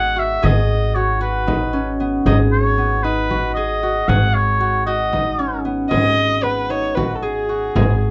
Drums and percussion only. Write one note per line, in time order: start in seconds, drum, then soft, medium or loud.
0.43 frame drum medium
1.48 frame drum medium
2.26 frame drum medium
3.31 frame drum soft
4.09 frame drum medium
4.35 frame drum soft
4.61 frame drum soft
5.13 frame drum soft
5.91 frame drum medium
6.97 frame drum medium
7.76 frame drum medium